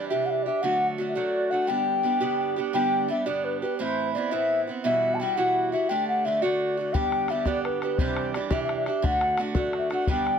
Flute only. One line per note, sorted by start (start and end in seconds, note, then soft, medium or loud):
0.09 0.27 E5 medium
0.26 0.31 F#5 medium
0.30 0.44 E5 medium
0.43 0.48 D5 medium
0.47 0.63 E5 medium
0.62 0.87 F#5 loud
1.08 1.16 E5 medium
1.14 1.52 D5 medium
1.50 1.69 F#5 medium
1.67 2.57 G5 medium
2.74 3.07 G5 loud
3.10 3.28 E5 medium
3.26 3.46 D5 medium
3.44 3.60 B4 medium
3.61 3.77 B4 medium
3.78 4.12 C5 medium
4.14 4.33 D5 medium
4.31 4.60 E5 loud
4.84 5.16 E5 loud
5.15 5.22 A5 soft
5.20 5.37 G5 medium
5.36 5.71 F#5 loud
5.72 5.90 E5 medium
5.89 6.07 G5 medium
6.08 6.27 F#5 medium
6.25 6.44 E5 medium
6.42 6.95 D5 medium
6.93 7.32 G5 loud
7.31 7.48 E5 medium
7.46 7.64 D5 loud
7.64 7.80 B4 medium
7.83 8.00 B4 medium
7.98 8.34 C5 medium
8.35 8.54 D5 medium
8.52 8.62 E5 medium
8.63 8.75 E5 medium
8.77 8.86 E5 medium
8.87 9.06 E5 medium
9.05 9.40 F#5 loud
9.58 9.74 D5 medium
9.77 9.91 E5 medium
9.93 10.08 F#5 medium
10.09 10.39 G5 medium